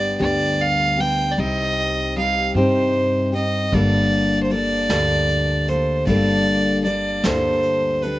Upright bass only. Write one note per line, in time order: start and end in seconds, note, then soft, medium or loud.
0.00 0.16 G1 medium
0.20 1.34 D2 medium
1.38 2.51 C2 medium
2.55 3.68 G2 medium
3.73 4.86 G1 medium
4.90 6.03 D2 medium
6.07 7.21 G1 medium
7.26 8.19 D2 medium